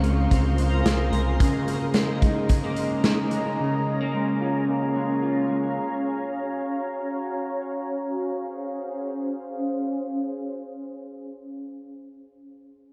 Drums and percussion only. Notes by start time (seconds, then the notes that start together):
0.04 closed hi-hat
0.31 kick, closed hi-hat
0.58 closed hi-hat
0.86 snare, closed hi-hat
1.13 closed hi-hat
1.40 kick, closed hi-hat
1.68 closed hi-hat
1.94 snare, closed hi-hat
2.22 kick, closed hi-hat
2.49 kick, closed hi-hat
2.76 closed hi-hat
3.04 snare, closed hi-hat
3.31 closed hi-hat